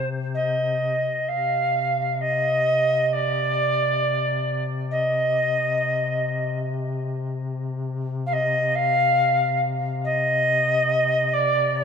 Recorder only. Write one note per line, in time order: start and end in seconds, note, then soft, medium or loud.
0.34 1.29 D#5 medium
1.28 2.22 F5 medium
2.20 3.05 D#5 medium
3.05 3.14 D#5 medium
3.12 4.63 D5 medium
4.90 6.59 D#5 medium
8.26 8.34 F5 medium
8.32 8.76 D#5 loud
8.75 9.61 F5 loud
10.04 11.34 D#5 loud
11.33 11.77 D5 medium
11.76 11.84 C5 medium